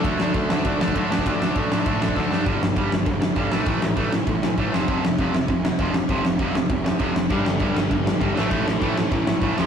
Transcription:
<<
  \new Staff \with { instrumentName = "Distorted electric guitar" } { \clef bass \time 4/4 \key d \mixolydian \tempo 4 = 198 <d a d'>8 <d a d'>8 <d a d'>8 <d a d'>8 <d a d'>8 <d a d'>8 <d a d'>8 <d a d'>8 | <d a d'>8 <d a d'>8 <d a d'>8 <d a d'>8 <d a d'>8 <d a d'>8 <d a d'>8 <d a d'>8 | \key a \minor <g, d g>8 <g, d>8 <g, d g>8 <g, d>8 <g, d>8 <g, d>8 <g, d g>8 <a, e a>8 | <a, e a>8 <a, e>8 <a, e a>8 <a, e>8 <a, e>8 <a, e>8 <a, e a>8 <f, c f>8 |
<f, c f>8 <f, c>8 <f, c f>8 <f, c>8 <f, c>8 <f, c>8 <f, c f>8 <f, c>8 | <f, c f>8 <f, c>8 <f, c f>8 <f, c>8 <f, c>8 <f, c>8 <f, c f>8 <f, c>8 | <g, d g>8 <g, d>8 <g, d g>8 <g, d>8 <g, d>8 <g, d>8 <g, d g>8 <a, e a>8 | <a, e a>8 <a, e>8 <a, e a>8 <a, e>8 <a, e>8 <a, e>8 <a, e a>8 <f, c f>8 | }
  \new Staff \with { instrumentName = "Overdriven electric guitar" } { \clef bass \time 4/4 \key d \mixolydian <d a d'>8 <d a d'>8 <d a d'>8 <d a d'>8 <d a d'>8 <d a d'>8 <d a d'>8 <d a d'>8 | <d a d'>8 <d a d'>8 <d a d'>8 <d a d'>8 <d a d'>8 <d a d'>8 <d a d'>8 <d a d'>8 | \key a \minor <g, d g>8 <g, d>8 <g, d g>8 <g, d>8 <g, d>8 <g, d>8 <g, d g>8 <a, e a>8 | <a, e a>8 <a, e>8 <a, e a>8 <a, e>8 <a, e>8 <a, e>8 <a, e a>8 <f, c f>8 |
<f, c f>8 <f, c>8 <f, c f>8 <f, c>8 <f, c>8 <f, c>8 <f, c f>8 <f, c>8 | <f, c f>8 <f, c>8 <f, c f>8 <f, c>8 <f, c>8 <f, c>8 <f, c f>8 <f, c>8 | <g, d g>8 <g, d>8 <g, d g>8 <g, d>8 <g, d>8 <g, d>8 <g, d g>8 <a, e a>8 | <a, e a>8 <a, e>8 <a, e a>8 <a, e>8 <a, e>8 <a, e>8 <a, e a>8 <f, c f>8 | }
  \new Staff \with { instrumentName = "Overdriven electric guitar" } { \clef bass \time 4/4 \key d \mixolydian r1 | r1 | \key a \minor r1 | r1 |
r1 | r1 | <g, d g>4. <g, d g>2 <a, e a>8~ | <a, e a>4 <a, e a>2~ <a, e a>8 <f, c f>8 | }
  \new Staff \with { instrumentName = "Picked electric bass" } { \clef bass \time 4/4 \key d \mixolydian d,8 d,8 d,8 d,8 d,8 d,8 d8 d,8 | d,4 a,,4 a,4 d,8 g,8 | \key a \minor g,,8 g,,8 g,,8 g,,8 g,,4 g,,8 a,,8 | a,,8 a,,8 a,,4 a,,4 a,,8 f,,8 |
f,,8 f,,8 f,,8 f,,8 f,,4 f,,4 | f,,8 f,,8 f,,4 f,,4 f,,8 f,,8 | g,,8 g,,8 g,,8 g,,8 g,,4 g,,8 a,,8 | a,,8 a,,8 a,,4 a,,4 a,,8 f,,8 | }
  \new DrumStaff \with { instrumentName = "Drums" } \drummode { \time 4/4 <bd cymr>8 sn8 <bd cymr>8 sn8 <bd cymr>8 sn16 bd16 <bd cymr>8 sn16 bd16 | <bd cymr>8 sn8 <bd cymr>8 sn8 <bd cymr>8 sn16 bd16 <bd sn>8 sn8 | <cymc bd>8 sn8 <cymc bd>8 sn8 <cymc bd>8 sn8 <cymc bd>8 sn8 | <cymc bd>8 sn8 <cymc bd>8 sn8 <cymc bd>8 sn8 <cymc bd>8 sn8 |
<cymc bd>8 sn8 <cymc bd>8 sn8 <cymc bd>8 sn8 <cymc bd>8 sn8 | <cymc bd>8 sn8 <cymc bd>8 sn8 <cymc bd>8 sn8 <cymc bd>8 sn8 | <cymc bd>8 sn8 <cymc bd>8 sn8 <cymc bd>8 sn8 <cymc bd>8 sn8 | <cymc bd>8 sn8 <cymc bd>8 sn8 <cymc bd>8 sn8 <cymc bd>8 sn8 | }
>>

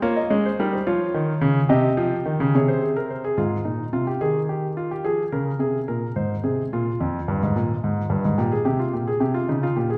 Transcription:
<<
  \new Staff \with { instrumentName = "Grand piano" } { \time 12/8 \key aes \mixolydian \tempo 4. = 72 << { des''16 ees''16 des''16 c''16 bes'16 c''16 des''4. ees''4. des''16 c''16 aes'16 bes'16 c''16 aes'16 | r1. | r1. | } \\ { f'8 des'8 ees'8 f'4. g'4. aes'4. | f'8 ees'8 f'16 g'16 aes'8 g'8 f'16 g'16 aes'8 bes'8 aes'8 bes'8 c''8 aes'8 | f'2. g'16 aes'16 g'16 f'16 g'16 aes'16 g'16 f'16 ees'16 f'16 g'16 aes'16 | } >> }
  \new Staff \with { instrumentName = "Grand piano" } { \clef bass \time 12/8 \key aes \mixolydian bes8 aes8 g8 f8 ees8 des8 c8 f8 ees16 des16 c4. | aes,8 bes,8 c8 ees4. f8 des8 c8 bes,8 aes,8 c8 | bes,8 f,8 g,16 aes,16 bes,8 aes,8 g,16 aes,16 bes,8 c8 bes,8 c8 des8 bes,8 | }
>>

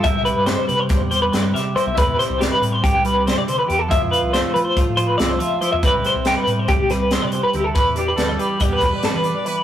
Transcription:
<<
  \new Staff \with { instrumentName = "Clean electric guitar" } { \time 9/8 \key c \major \tempo 4. = 93 e''8 b'8 c''8 b'16 c''8 r16 c''16 b'16 d''16 c''16 e''8 c''16 e''16 | b'8 c''8 g'16 b'8 c''16 g'8 b'8 c''16 d''16 c''16 b'16 g'16 a'16 | e''8 b'8 c''8 b'16 c''8 r16 c''16 b'16 d''16 c''16 e''8 c''16 e''16 | b'8 c''8 g'16 b'8 c''16 g'8 b'8 c''16 d''16 c''16 b'16 g'16 a'16 |
b'8 g'16 b'8 d''16 b'8 d''16 b'8 d''16 a'16 b'8 d''16 b'8 | }
  \new Staff \with { instrumentName = "Trumpet" } { \time 9/8 \key c \major r1 r8 | r1 r8 | r1 r8 | r1 r8 |
b'8 g'8 a'8 g'8 g'8 b'4. b'8 | }
  \new Staff \with { instrumentName = "Clean electric guitar" } { \time 9/8 \key c \major << { e'8 g'8 b'4 g'4 b'8 g'8 e'8 | e'8 g'8 b'4 g'2~ g'8 | e'8 f'8 a'4 f'4 a'8 f'8 e'8 | <g e' g' b'>8 g'8 b'4 g'4 a'16 b'16 g'8 e'8 |
r8 d'4 d'4 g'8 g'8 d'4 | } \\ { c4 g4. g4. c8 | c4 g4. g8 c8 d8 e8 | f4 a4. f4. f8 | c4 g4. g4. c8 |
e4 g4 b,2 e8 | } >> }
  \new Staff \with { instrumentName = "Fingered electric bass" } { \clef bass \time 9/8 \key c \major c,8. g,8 r16 c8 r16 e,8. g,8 c8 r16 b,,16 | e,8 r16 c,8 r16 a,8 r16 c,4 c8 r16 e,8 | f,8. c,8 r16 f8 r16 a,8. c,8 f8 r16 e,16 | c,8 r16 c,8 r16 a,8 r16 c,4 c8 r16 d,8 |
e,4 d,8 r8 e,8 e,16 r16 g,16 e8 r8. | }
  \new DrumStaff \with { instrumentName = "Drums" } \drummode { \time 9/8 <hh bd>8 hh8 <hh sn>8 hh8 <hh bd sn>8 hh8 <hh sn>8 <hh sn>8 hh8 | <hh bd>8 <hh sn>8 <hh sn>8 hh8 <hh bd>8 hh8 <hh sn>8 hh8 hh8 | <hh bd>8 hh8 <hh sn>8 hh8 <hh bd>8 hh8 <hh sn>8 hh8 hh8 | <hh bd>8 <hh sn>8 <hh sn>8 hh8 <hh bd>8 <hh sn>8 <hh sn>8 hh8 hh8 |
<hh bd>8 hh8 <hh sn>8 hh8 <hh bd>8 <hh bd sn>8 <hh sn>8 hh8 hh8 | }
>>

